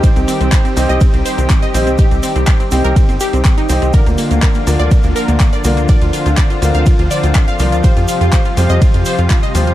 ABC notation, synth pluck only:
X:1
M:4/4
L:1/16
Q:1/4=123
K:Cm
V:1 name="Synth pluck"
c C C C c C C e C C c C C e C C | G C C C G C C B C C G C C E C C | B B, B, B, B B, B, d B, B, B B, B, d B, B, | d F F F d F F f F F d F F f F F |
c F F F c F F e F F c F F e F F |]